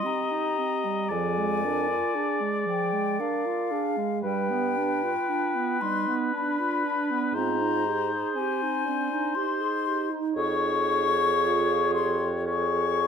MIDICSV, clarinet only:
0, 0, Header, 1, 2, 480
1, 0, Start_track
1, 0, Tempo, 1050788
1, 508, Time_signature, 3, 2, 24, 8
1, 2421, Tempo, 1013514
1, 4821, Tempo, 1052632
1, 6054, End_track
2, 0, Start_track
2, 0, Title_t, "Clarinet"
2, 0, Program_c, 0, 71
2, 18, Note_on_c, 0, 60, 47
2, 144, Note_on_c, 0, 63, 45
2, 151, Note_off_c, 0, 60, 0
2, 267, Note_on_c, 0, 60, 43
2, 274, Note_off_c, 0, 63, 0
2, 387, Note_on_c, 0, 55, 44
2, 394, Note_off_c, 0, 60, 0
2, 508, Note_off_c, 0, 55, 0
2, 510, Note_on_c, 0, 53, 52
2, 631, Note_on_c, 0, 56, 50
2, 638, Note_off_c, 0, 53, 0
2, 751, Note_on_c, 0, 62, 43
2, 758, Note_off_c, 0, 56, 0
2, 859, Note_on_c, 0, 65, 51
2, 866, Note_off_c, 0, 62, 0
2, 981, Note_on_c, 0, 62, 46
2, 988, Note_off_c, 0, 65, 0
2, 1099, Note_on_c, 0, 56, 44
2, 1106, Note_off_c, 0, 62, 0
2, 1217, Note_on_c, 0, 53, 44
2, 1223, Note_off_c, 0, 56, 0
2, 1337, Note_on_c, 0, 56, 45
2, 1344, Note_off_c, 0, 53, 0
2, 1460, Note_on_c, 0, 62, 47
2, 1467, Note_off_c, 0, 56, 0
2, 1580, Note_on_c, 0, 65, 46
2, 1587, Note_off_c, 0, 62, 0
2, 1694, Note_on_c, 0, 62, 47
2, 1701, Note_off_c, 0, 65, 0
2, 1815, Note_on_c, 0, 56, 46
2, 1822, Note_off_c, 0, 62, 0
2, 1932, Note_off_c, 0, 56, 0
2, 1935, Note_on_c, 0, 55, 53
2, 2059, Note_on_c, 0, 59, 44
2, 2065, Note_off_c, 0, 55, 0
2, 2180, Note_on_c, 0, 62, 44
2, 2187, Note_off_c, 0, 59, 0
2, 2300, Note_on_c, 0, 65, 46
2, 2307, Note_off_c, 0, 62, 0
2, 2416, Note_on_c, 0, 62, 50
2, 2423, Note_off_c, 0, 65, 0
2, 2541, Note_on_c, 0, 59, 44
2, 2548, Note_off_c, 0, 62, 0
2, 2665, Note_on_c, 0, 55, 44
2, 2672, Note_off_c, 0, 59, 0
2, 2787, Note_on_c, 0, 59, 47
2, 2794, Note_off_c, 0, 55, 0
2, 2910, Note_on_c, 0, 62, 43
2, 2917, Note_off_c, 0, 59, 0
2, 3034, Note_on_c, 0, 65, 48
2, 3042, Note_off_c, 0, 62, 0
2, 3153, Note_on_c, 0, 62, 50
2, 3160, Note_off_c, 0, 65, 0
2, 3276, Note_on_c, 0, 59, 45
2, 3284, Note_off_c, 0, 62, 0
2, 3393, Note_off_c, 0, 59, 0
2, 3400, Note_on_c, 0, 60, 52
2, 3517, Note_on_c, 0, 63, 52
2, 3525, Note_off_c, 0, 60, 0
2, 3639, Note_on_c, 0, 67, 48
2, 3647, Note_off_c, 0, 63, 0
2, 3761, Note_on_c, 0, 68, 50
2, 3768, Note_off_c, 0, 67, 0
2, 3887, Note_on_c, 0, 67, 56
2, 3894, Note_off_c, 0, 68, 0
2, 3998, Note_on_c, 0, 63, 49
2, 4005, Note_off_c, 0, 67, 0
2, 4117, Note_on_c, 0, 60, 48
2, 4124, Note_off_c, 0, 63, 0
2, 4229, Note_on_c, 0, 63, 52
2, 4236, Note_off_c, 0, 60, 0
2, 4343, Note_on_c, 0, 67, 48
2, 4350, Note_off_c, 0, 63, 0
2, 4461, Note_on_c, 0, 68, 52
2, 4469, Note_off_c, 0, 67, 0
2, 4586, Note_on_c, 0, 67, 50
2, 4593, Note_off_c, 0, 68, 0
2, 4697, Note_on_c, 0, 63, 51
2, 4704, Note_off_c, 0, 67, 0
2, 4816, Note_off_c, 0, 63, 0
2, 4819, Note_on_c, 0, 68, 62
2, 5701, Note_off_c, 0, 68, 0
2, 5778, Note_on_c, 0, 68, 55
2, 6054, Note_off_c, 0, 68, 0
2, 6054, End_track
0, 0, End_of_file